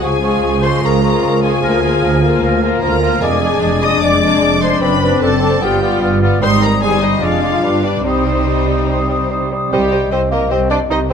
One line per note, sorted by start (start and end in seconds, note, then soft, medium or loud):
0.02 0.38 C#2 soft
0.02 0.21 F3 soft
0.02 1.59 G#3 soft
0.02 3.18 F4 medium
0.02 0.22 G#4 soft
0.02 0.63 G#4 medium
0.02 0.63 G#5 medium
0.02 0.21 C#6 soft
0.22 0.42 F3 soft
0.22 0.61 G#3 soft
0.22 0.61 F4 soft
0.22 0.43 G#4 soft
0.22 0.42 C#6 soft
0.43 0.78 C#2 medium
0.43 0.78 C#2 soft
0.43 0.62 F3 soft
0.43 0.62 G#4 soft
0.43 0.62 C#6 soft
0.62 0.81 F3 soft
0.62 1.02 G#3 soft
0.62 1.01 F4 soft
0.62 0.83 G#4 soft
0.62 0.83 C5 medium
0.62 0.83 C6 medium
0.62 0.82 C#6 soft
0.82 1.18 C#2 soft
0.82 1.01 F3 soft
0.82 1.02 G#4 soft
0.82 1.42 A#4 soft
0.82 1.43 A#5 medium
0.82 1.02 C#6 soft
1.02 1.21 F3 soft
1.02 1.41 G#3 soft
1.02 1.41 F4 soft
1.02 1.23 G#4 soft
1.02 1.22 C#6 soft
1.22 1.58 C#2 medium
1.22 1.59 C#2 medium
1.22 1.41 F3 soft
1.22 1.43 G#4 soft
1.22 1.42 C#6 soft
1.42 1.61 F3 soft
1.42 1.63 G#3 soft
1.42 1.62 F4 soft
1.42 1.62 G#4 soft
1.42 2.63 G#4 medium
1.42 2.60 G#5 medium
1.42 1.63 C#6 soft
1.62 1.98 D2 medium
1.62 1.82 F3 medium
1.62 1.83 A#3 soft
1.62 3.19 A#3 medium
1.62 1.82 F4 soft
1.62 1.82 A#4 soft
1.62 1.82 F6 soft
1.82 2.02 F3 soft
1.82 2.22 A#3 soft
1.82 2.22 F4 soft
1.82 2.02 A#4 soft
1.82 2.02 F6 soft
2.03 2.38 D2 soft
2.03 2.38 D2 medium
2.03 2.22 F3 soft
2.03 2.22 A#4 soft
2.03 2.22 F6 soft
2.22 2.42 F3 soft
2.22 2.61 A#3 soft
2.22 2.61 F4 soft
2.22 2.42 A#4 soft
2.22 2.42 F6 soft
2.43 2.78 D2 soft
2.43 2.78 D2 medium
2.43 2.62 F3 soft
2.43 2.62 A#4 soft
2.43 2.61 F6 medium
2.62 2.81 F3 soft
2.62 3.01 A#3 soft
2.62 3.01 F4 medium
2.62 2.82 A#4 soft
2.62 2.81 F6 soft
2.82 3.18 D2 medium
2.82 3.01 F3 soft
2.82 3.02 A#4 soft
2.82 3.20 A#4 medium
2.82 3.20 A#5 medium
2.82 3.01 F6 soft
3.02 3.21 F3 soft
3.02 3.22 A#3 soft
3.02 3.22 F4 soft
3.02 3.21 A#4 soft
3.02 3.22 F6 soft
3.22 3.58 F1 medium
3.22 3.58 F2 medium
3.22 3.42 G#3 medium
3.22 4.65 G#3 medium
3.22 5.58 D4 medium
3.22 3.83 G#4 medium
3.22 3.42 D5 medium
3.22 3.82 G#5 medium
3.22 3.41 D6 medium
3.42 3.61 G#3 soft
3.42 3.81 G#3 soft
3.42 3.81 D4 soft
3.42 3.61 D5 soft
3.42 3.60 D6 soft
3.61 3.98 F1 medium
3.61 3.97 F2 soft
3.61 3.81 G#3 soft
3.61 3.82 D5 soft
3.61 3.80 D6 soft
3.81 4.01 G#3 soft
3.81 4.21 G#3 soft
3.81 4.21 D4 soft
3.81 4.01 D5 soft
3.81 4.03 D#5 medium
3.81 4.01 D6 soft
3.81 4.02 D#6 medium
4.02 4.37 F1 medium
4.02 4.37 F2 medium
4.02 4.21 G#3 soft
4.02 4.21 D5 medium
4.02 4.61 D5 medium
4.02 4.62 D6 medium
4.02 4.21 D6 soft
4.22 4.41 G#3 soft
4.22 4.61 G#3 medium
4.22 4.61 D4 medium
4.22 4.41 D5 soft
4.22 4.41 D6 soft
4.41 4.77 F1 medium
4.41 4.77 F2 medium
4.41 4.61 G#3 soft
4.41 4.61 D5 soft
4.41 4.61 D6 soft
4.61 4.81 G#3 soft
4.61 4.82 G#3 soft
4.61 4.81 D4 soft
4.61 4.82 C5 medium
4.61 4.81 D5 soft
4.61 4.82 C6 medium
4.61 4.81 D6 soft
4.81 5.18 F#1 medium
4.81 5.17 F#2 medium
4.81 5.58 C4 medium
4.81 5.02 C4 medium
4.81 5.01 C4 medium
4.81 5.01 D4 medium
4.81 5.22 B4 medium
4.81 5.02 D5 soft
4.81 5.21 B5 medium
4.81 5.00 D6 medium
5.02 5.21 C4 soft
5.02 5.41 C4 soft
5.02 5.41 D4 soft
5.02 5.22 D5 soft
5.02 5.22 D6 soft
5.21 5.57 F#1 medium
5.21 5.57 F#2 soft
5.21 5.42 C4 soft
5.21 5.62 A4 medium
5.21 5.42 D5 soft
5.21 5.61 A5 medium
5.21 5.41 D6 soft
5.42 5.62 C4 soft
5.42 5.61 C4 soft
5.42 5.62 D4 soft
5.42 5.61 D5 soft
5.42 5.62 D6 soft
5.62 5.97 G1 soft
5.62 5.97 G2 medium
5.62 5.82 B3 soft
5.62 5.81 B3 soft
5.62 6.38 B3 soft
5.62 5.81 F4 soft
5.62 6.39 F4 medium
5.62 6.02 G4 medium
5.62 5.82 D5 soft
5.62 6.02 G5 medium
5.62 5.81 F6 soft
5.82 6.21 B3 soft
5.82 6.02 B3 soft
5.82 6.22 F4 medium
5.82 6.01 D5 soft
5.82 6.01 F6 soft
6.02 6.37 G1 medium
6.02 6.37 G2 medium
6.02 6.22 B3 soft
6.02 6.21 D5 soft
6.02 6.21 F6 soft
6.22 6.41 B3 soft
6.22 6.42 B3 soft
6.22 6.42 F4 soft
6.22 6.41 D5 soft
6.22 6.42 F6 soft
6.41 6.79 G#1 medium
6.41 6.79 G#2 medium
6.41 6.61 G3 medium
6.41 6.80 G3 soft
6.41 7.19 G3 medium
6.41 7.19 D#4 medium
6.41 6.80 D#4 medium
6.41 6.62 C5 medium
6.41 6.50 C5 medium
6.41 6.61 C6 medium
6.41 6.61 D#6 soft
6.62 6.81 G3 soft
6.62 6.70 A#4 medium
6.62 6.82 C5 soft
6.62 6.82 A#5 medium
6.62 6.82 D#6 soft
6.82 7.23 G1 medium
6.82 7.23 G2 soft
6.82 7.02 G3 soft
6.82 7.22 G3 soft
6.82 7.22 D#4 soft
6.82 7.02 G#4 medium
6.82 7.01 C5 soft
6.82 7.02 G#5 medium
6.82 7.01 D#6 soft
7.02 7.22 G3 soft
7.02 7.22 D#4 soft
7.02 7.21 C5 soft
7.02 7.23 D#5 medium
7.02 7.23 D#6 soft
7.22 7.63 F1 soft
7.22 7.63 F2 soft
7.22 7.63 G#3 soft
7.22 7.42 G#3 soft
7.22 7.61 G#3 soft
7.22 7.62 D4 soft
7.22 8.02 D4 soft
7.22 7.83 F4 medium
7.22 7.41 D5 soft
7.22 7.84 F5 medium
7.22 7.42 D6 soft
7.42 7.63 G#3 soft
7.42 7.62 D5 soft
7.42 7.63 D6 soft
7.63 8.05 G1 soft
7.63 8.04 G2 medium
7.63 7.83 G3 soft
7.63 9.48 G3 medium
7.63 8.05 G3 soft
7.63 8.04 D4 soft
7.63 7.83 B4 soft
7.63 7.83 D6 soft
7.84 8.04 G3 soft
7.84 8.05 D4 soft
7.84 8.05 B4 soft
7.84 8.05 D5 medium
7.84 8.05 D6 soft
8.05 9.49 C2 soft
8.05 9.49 C3 soft
8.05 8.26 G3 soft
8.05 9.49 G3 soft
8.05 9.28 C4 medium
8.05 9.48 D#4 soft
8.05 9.53 D#4 medium
8.05 8.26 C5 soft
8.05 9.28 C5 medium
8.05 8.26 D#6 soft
8.26 8.46 G3 soft
8.26 8.46 C5 soft
8.26 8.47 D#6 soft
8.47 8.67 G3 soft
8.47 8.67 C5 soft
8.47 8.68 D#6 soft
8.68 8.88 G3 soft
8.68 8.88 C5 soft
8.68 8.88 D#6 soft
8.89 9.09 G3 soft
8.89 9.09 C5 soft
8.89 9.09 D#6 soft
9.09 9.30 G3 soft
9.09 9.30 C5 soft
9.09 9.30 D#6 soft
9.31 9.51 G3 soft
9.31 9.51 C5 soft
9.31 9.51 D#6 soft
9.52 9.72 G3 soft
9.52 9.72 C5 soft
9.52 9.72 D#6 soft
9.72 10.07 C2 medium
9.72 10.09 G3 medium
9.72 10.09 G4 medium
9.72 9.80 G4 soft
9.72 11.13 G4 medium
9.72 9.80 C5 soft
9.72 11.13 D#5 medium
9.72 9.81 D#5 soft
9.91 10.00 G4 soft
9.91 10.00 C5 soft
9.91 9.99 D#5 soft
10.11 10.46 C2 medium
10.11 10.46 C2 soft
10.11 10.31 C4 medium
10.11 10.19 G4 soft
10.11 10.20 C5 soft
10.11 10.20 C5 medium
10.11 10.19 D#5 soft
10.32 10.51 A#3 medium
10.32 10.40 G4 soft
10.32 10.51 A#4 medium
10.32 10.40 C5 soft
10.32 10.39 D#5 soft
10.51 10.86 C2 medium
10.51 10.86 C2 soft
10.51 10.70 C4 medium
10.51 10.59 G4 soft
10.51 10.59 C5 soft
10.51 10.59 C5 medium
10.51 10.59 D#5 soft
10.70 10.80 D4 medium
10.70 10.78 G4 soft
10.70 10.78 C5 soft
10.70 10.78 D5 medium
10.70 10.79 D#5 soft
10.90 11.13 C2 soft
10.90 11.13 C2 medium
10.90 10.99 D#4 medium
10.90 10.98 G4 soft
10.90 10.98 C5 soft
10.90 10.99 D#5 soft
10.90 10.99 D#5 medium
11.10 11.13 C5 soft